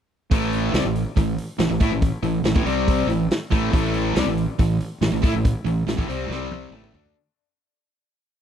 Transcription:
0.31 0.71 A1 medium
0.31 0.73 A2 medium
0.31 0.74 E3 medium
0.31 0.74 A3 loud
0.31 kick loud
0.31 open hi-hat medium
0.53 open hi-hat medium
0.74 0.84 C2 medium
0.74 0.84 C3 medium
0.74 0.84 G3 medium
0.74 snare loud
0.74 open hi-hat medium
0.85 1.04 A1 medium
0.85 1.02 A2 medium
0.85 1.02 E3 medium
0.96 open hi-hat medium
1.17 1.36 A1 medium
1.17 1.34 A2 medium
1.17 1.34 E3 medium
1.17 kick medium
1.17 open hi-hat medium
1.38 open hi-hat medium
1.59 1.69 A1 medium
1.59 1.69 A2 medium
1.59 1.70 E3 medium
1.59 snare loud
1.59 open hi-hat medium
1.71 1.80 A1 medium
1.71 1.81 A2 medium
1.71 1.81 E3 medium
1.81 1.90 A2 loud
1.81 1.91 A3 medium
1.81 1.91 E4 medium
1.81 kick loud
1.81 open hi-hat medium
1.90 2.11 A1 medium
1.90 2.09 A2 medium
1.90 2.09 E3 medium
2.02 kick loud
2.02 open hi-hat medium
2.23 2.43 A1 medium
2.23 2.41 A2 medium
2.23 2.41 E3 medium
2.23 open hi-hat medium
2.44 2.54 A1 medium
2.44 2.54 A2 medium
2.44 2.55 E3 medium
2.44 snare loud
2.44 open hi-hat medium
2.56 2.65 A1 medium
2.56 2.66 A2 medium
2.56 2.66 E3 loud
2.56 kick loud
2.65 3.06 C2 medium
2.65 3.08 C3 loud
2.65 3.08 G3 medium
2.65 3.09 C4 loud
2.65 open hi-hat medium
2.88 kick loud
2.88 open hi-hat medium
3.07 3.28 A1 medium
3.07 3.26 A2 medium
3.07 3.26 E3 medium
3.07 open hi-hat medium
3.31 snare loud
3.31 open hi-hat medium
3.51 3.72 A1 loud
3.51 3.71 A2 medium
3.51 3.72 E3 loud
3.51 3.72 A3 loud
3.51 kick loud
3.51 open hi-hat medium
3.73 4.14 A1 medium
3.73 4.15 A2 loud
3.73 4.16 E3 medium
3.73 4.16 A3 loud
3.73 kick loud
3.73 open hi-hat medium
3.94 open hi-hat medium
4.16 4.26 C2 medium
4.16 4.26 C3 loud
4.16 4.27 G3 loud
4.16 snare loud
4.16 open hi-hat medium
4.26 4.47 A1 medium
4.26 4.45 A2 medium
4.26 4.45 E3 medium
4.38 open hi-hat medium
4.59 4.79 A1 medium
4.59 4.77 A2 medium
4.59 4.77 E3 medium
4.59 kick medium
4.59 open hi-hat medium
4.80 open hi-hat medium
5.01 5.11 A1 medium
5.01 5.12 A2 medium
5.01 5.13 E3 medium
5.01 snare loud
5.01 open hi-hat medium
5.12 5.22 A1 medium
5.12 5.24 A2 medium
5.12 5.23 E3 medium
5.23 5.33 A2 medium
5.23 5.33 A3 medium
5.23 5.34 E4 loud
5.23 kick loud
5.23 open hi-hat medium
5.34 5.54 A1 medium
5.34 5.51 A2 medium
5.34 5.51 E3 medium
5.45 kick loud
5.45 open hi-hat medium
5.65 5.85 A1 medium
5.65 5.83 A2 medium
5.65 5.84 E3 medium
5.65 open hi-hat medium
5.88 5.97 A1 medium
5.88 5.96 A2 medium
5.88 5.97 E3 medium
5.88 snare loud
5.88 open hi-hat medium
5.98 6.08 A1 medium
5.98 6.08 A2 medium
5.98 6.08 E3 loud
5.98 kick loud
6.08 6.28 C2 medium
6.08 6.28 C3 medium
6.08 6.29 G3 medium
6.08 6.29 C4 loud
6.08 open hi-hat medium
6.29 6.69 C2 medium
6.29 6.72 C3 medium
6.29 6.72 G3 medium
6.29 6.72 C4 loud
6.29 snare medium
6.51 high tom medium
6.71 6.92 A1 medium
6.71 6.93 A2 medium
6.71 6.94 E3 medium
6.71 6.93 A3 medium
6.71 mid tom medium
6.83 mid tom medium
6.94 7.14 D2 loud
6.94 7.14 D3 medium
6.94 7.15 A3 loud
6.94 7.15 D4 loud
6.94 floor tom loud
7.05 floor tom medium

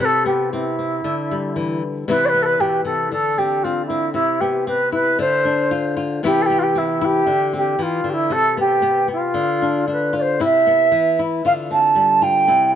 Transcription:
0.00 1.00 C3 medium
0.00 0.06 B4 loud
0.05 0.24 A4 loud
0.26 1.00 B3 medium
0.26 0.49 G4 medium
0.52 0.77 C4 medium
0.52 1.78 E4 medium
0.79 1.01 C4 medium
1.04 2.05 D3 medium
1.31 2.08 G3 medium
1.56 1.81 E3 medium
2.08 2.60 C3 medium
2.08 3.09 E3 medium
2.08 2.33 B3 medium
2.08 3.10 C4 medium
2.08 3.13 E4 medium
2.08 2.26 B4 loud
2.25 2.43 B4 loud
2.25 2.29 D5 loud
2.34 3.09 B3 medium
2.42 2.46 A4 loud
2.42 2.62 B4 loud
2.60 2.84 B2 medium
2.60 2.84 G4 medium
2.85 3.11 C3 medium
2.85 3.09 A4 medium
3.12 4.16 D3 medium
3.12 3.39 A4 loud
3.38 3.63 C4 medium
3.38 3.65 G4 medium
3.63 3.89 C4 medium
3.63 3.85 F4 medium
3.86 4.13 C4 medium
3.86 4.12 E4 medium
4.13 5.16 C3 medium
4.13 4.42 E4 loud
4.40 5.17 B3 medium
4.40 4.67 G4 medium
4.67 5.17 C4 medium
4.67 4.92 B4 medium
4.92 5.19 E4 medium
4.92 5.18 B4 loud
5.19 6.23 D3 medium
5.19 5.94 C5 loud
5.45 6.21 D4 medium
5.71 5.95 F4 medium
5.97 6.20 F4 medium
6.23 7.25 C3 medium
6.23 7.25 E3 medium
6.23 6.49 B3 medium
6.23 6.74 C4 medium
6.23 7.00 E4 medium
6.23 6.43 G4 loud
6.42 6.47 A4 loud
6.46 6.60 G4 loud
6.50 7.25 B3 medium
6.59 6.64 F4 loud
6.63 6.79 G4 loud
6.75 7.25 C4 medium
6.75 7.06 E4 medium
7.01 7.28 E4 medium
7.01 7.55 G4 loud
7.27 7.78 D3 medium
7.53 8.29 C4 medium
7.53 7.83 G4 medium
7.79 8.04 E3 medium
7.79 8.11 F4 medium
8.04 8.31 D3 medium
8.09 8.34 E4 loud
8.09 8.14 G4 medium
8.30 9.32 C3 medium
8.30 8.58 A4 loud
8.57 8.81 B3 medium
8.57 9.07 G4 medium
8.82 9.07 B3 medium
9.08 9.32 B3 medium
9.12 9.85 F4 medium
9.34 10.39 D3 medium
9.62 9.86 D4 medium
9.88 10.37 D4 medium
9.92 10.15 B4 medium
10.13 10.37 F4 medium
10.17 10.40 C5 medium
10.17 10.22 D5 medium
10.40 10.92 C3 medium
10.40 11.18 E4 medium
10.44 11.19 E5 loud
10.67 11.42 B3 medium
10.92 11.41 E3 medium
11.19 11.45 E4 medium
11.45 12.49 D3 medium
11.45 12.21 F4 medium
11.45 11.52 F5 loud
11.71 12.46 C4 medium
11.71 12.24 A5 loud
11.95 12.74 G3 medium
12.22 12.45 F4 medium
12.22 12.74 G5 loud
12.48 12.75 C3 medium
12.48 12.75 E4 medium

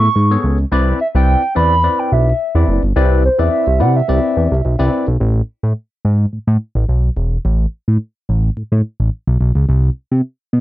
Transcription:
0.00 0.44 C#6 loud
0.16 0.37 G#2 loud
0.31 0.57 B3 medium
0.31 0.57 G#4 medium
0.31 0.57 A4 medium
0.31 0.57 C#5 medium
0.44 0.65 C#2 medium
0.72 0.93 C2 loud
0.72 0.98 C4 medium
0.72 0.98 E4 medium
0.72 0.98 B4 medium
0.72 0.99 D5 loud
1.01 1.07 E5 medium
1.15 1.36 C2 loud
1.15 1.41 C4 medium
1.15 1.41 E4 medium
1.15 1.41 B4 medium
1.15 1.41 D5 medium
1.15 1.54 G5 loud
1.55 1.89 E2 loud
1.55 1.74 C4 medium
1.55 1.74 E4 medium
1.55 1.74 B4 medium
1.55 1.74 D5 medium
1.55 2.01 B5 loud
1.83 2.28 C4 medium
1.83 2.28 E4 medium
1.83 2.28 B4 medium
1.83 2.29 D5 medium
1.99 2.14 G5 loud
2.12 2.33 B1 medium
2.12 2.68 E5 medium
2.55 2.65 E2 loud
2.55 2.81 C4 medium
2.55 2.81 E4 medium
2.55 2.81 B4 medium
2.55 2.81 D5 medium
2.68 2.79 F#1 medium
2.83 2.93 G1 medium
2.96 3.29 C2 loud
2.96 3.22 C4 medium
2.96 3.22 E4 medium
2.96 3.23 B4 medium
2.96 3.23 D5 loud
3.25 3.38 C5 medium
3.38 3.49 E2 medium
3.38 3.65 C4 medium
3.38 3.65 E4 medium
3.38 3.65 B4 medium
3.38 3.65 D5 medium
3.38 3.83 E5 loud
3.67 3.82 C2 loud
3.79 4.02 C3 loud
3.79 3.98 C4 medium
3.79 3.98 E4 medium
3.79 3.98 B4 medium
3.79 3.98 D5 medium
3.79 3.98 F#5 loud
3.96 4.93 E5 medium
4.08 4.20 C2 medium
4.08 4.53 C4 medium
4.08 4.53 E4 medium
4.08 4.53 B4 medium
4.08 4.53 D5 medium
4.37 4.48 E2 medium
4.52 4.61 C2 medium
4.65 4.76 B1 medium
4.79 4.89 C2 medium
4.79 5.05 C4 medium
4.79 5.05 E4 medium
4.79 5.05 B4 medium
4.79 5.06 D5 medium
5.07 5.17 B1 medium
5.20 5.42 A1 loud
5.63 5.73 A2 loud
6.05 6.26 G#2 medium
6.33 6.39 A2 soft
6.47 6.57 A2 loud
6.75 6.85 A1 medium
6.89 7.10 B1 medium
7.17 7.38 E1 medium
7.45 7.66 A1 loud
7.88 7.98 A2 medium
8.29 8.50 A1 medium
8.57 8.63 A2 soft
8.72 8.82 A2 loud
9.00 9.10 A1 medium
9.27 9.38 B1 medium
9.41 9.52 B1 medium
9.55 9.66 C#2 medium
9.69 9.90 C2 loud
10.11 10.22 C3 medium
10.53 10.60 B2 loud

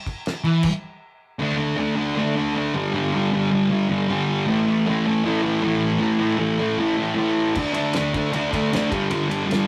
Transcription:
0.07 kick loud
0.07 crash medium
0.26 snare loud
0.26 crash medium
0.44 0.63 E3 loud
0.44 crash medium
0.63 kick loud
0.63 crash loud
1.39 1.76 D3 medium
1.39 1.60 A3 medium
1.39 1.57 D4 loud
1.58 1.78 A3 medium
1.58 1.79 D4 medium
1.77 2.14 D3 medium
1.77 1.97 A3 medium
1.77 1.95 D4 medium
1.96 2.15 A3 medium
1.96 2.17 D4 medium
2.15 2.54 D3 loud
2.15 2.37 A3 loud
2.15 2.34 D4 loud
2.35 2.55 A3 medium
2.35 2.56 D4 medium
2.55 2.73 D3 medium
2.55 2.74 A3 medium
2.55 2.75 D4 medium
2.74 2.92 G2 medium
2.74 2.93 D3 medium
2.74 2.95 G3 loud
2.93 3.31 G2 loud
2.93 3.15 D3 loud
2.93 3.12 G3 loud
3.13 3.31 D3 medium
3.13 3.33 G3 medium
3.32 3.68 G2 medium
3.32 3.52 D3 medium
3.32 3.50 G3 medium
3.51 3.70 D3 medium
3.51 3.70 G3 medium
3.70 4.07 G2 loud
3.70 3.90 D3 loud
3.70 3.88 G3 loud
3.89 4.08 D3 medium
3.89 4.09 G3 medium
4.08 4.46 G2 medium
4.08 4.46 D3 medium
4.08 4.47 G3 medium
4.46 4.86 A2 medium
4.46 4.69 E3 loud
4.46 4.66 A3 loud
4.66 4.87 E3 medium
4.66 4.88 A3 medium
4.86 5.23 A2 medium
4.86 5.07 E3 medium
4.86 5.05 A3 medium
5.06 5.24 E3 medium
5.06 5.26 A3 medium
5.24 5.61 A2 loud
5.24 5.44 E3 loud
5.24 5.42 A3 loud
5.43 5.62 E3 medium
5.43 5.64 A3 medium
5.62 5.98 A2 medium
5.62 6.00 E3 medium
5.62 6.02 A3 medium
5.99 6.36 A2 loud
5.99 6.21 E3 loud
5.99 6.19 A3 loud
6.19 6.37 E3 medium
6.19 6.40 A3 medium
6.38 6.77 A2 medium
6.38 6.60 E3 medium
6.38 6.58 A3 medium
6.59 6.78 E3 medium
6.59 6.79 A3 medium
6.78 7.14 A2 medium
6.78 6.98 E3 loud
6.78 6.96 A3 loud
6.97 7.16 E3 medium
6.97 7.17 A3 medium
7.15 7.53 A2 medium
7.15 7.54 E3 medium
7.15 7.55 A3 medium
7.55 7.93 D3 medium
7.55 7.75 A3 loud
7.55 7.73 D4 loud
7.55 kick loud
7.55 crash loud
7.74 7.94 A3 medium
7.74 7.96 D4 medium
7.74 ride medium
7.93 8.31 D3 medium
7.93 8.16 A3 medium
7.93 8.13 D4 medium
7.93 snare loud
7.93 ride loud
8.14 8.32 A3 medium
8.14 8.34 D4 medium
8.14 kick medium
8.14 ride medium
8.32 8.71 D3 loud
8.32 8.53 A3 loud
8.32 8.51 D4 loud
8.32 ride loud
8.52 8.73 A3 medium
8.52 8.73 D4 medium
8.52 kick loud
8.52 ride medium
8.72 8.90 D3 medium
8.72 8.91 A3 medium
8.72 8.91 D4 medium
8.72 snare loud
8.72 ride loud
8.91 9.09 G2 medium
8.91 9.10 D3 medium
8.91 9.11 G3 loud
8.91 kick loud
8.91 ride medium
9.10 9.45 G2 loud
9.10 9.29 D3 loud
9.10 9.27 G3 loud
9.10 ride loud
9.28 9.46 D3 medium
9.28 9.47 G3 medium
9.28 ride medium
9.46 9.67 G2 medium
9.46 9.67 D3 medium
9.46 9.65 G3 medium
9.51 snare loud
9.51 ride loud

